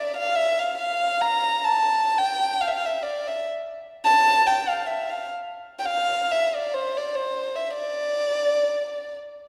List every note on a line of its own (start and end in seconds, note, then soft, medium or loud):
0.00 0.16 D5 medium
0.17 0.37 F5 medium
0.35 0.61 E5 loud
0.59 0.77 F5 medium
0.78 1.22 F5 medium
1.21 1.66 A#5 medium
1.64 2.20 A5 medium
2.18 2.63 G5 loud
2.61 2.69 F5 medium
2.67 2.74 E5 medium
2.72 2.86 F5 medium
2.85 3.04 E5 medium
3.03 3.29 D5 medium
3.27 3.46 E5 medium
4.05 4.48 A5 loud
4.46 4.70 G5 loud
4.69 4.88 F5 medium
4.86 5.11 E5 medium
5.10 5.29 F5 medium
5.79 5.87 G5 medium
5.85 6.33 F5 loud
6.31 6.46 E5 loud
6.46 6.56 E5 medium
6.55 6.75 D5 medium
6.73 6.99 C5 medium
6.97 7.17 D5 medium
7.15 7.57 C5 medium
7.56 7.72 E5 medium
7.74 9.15 D5 loud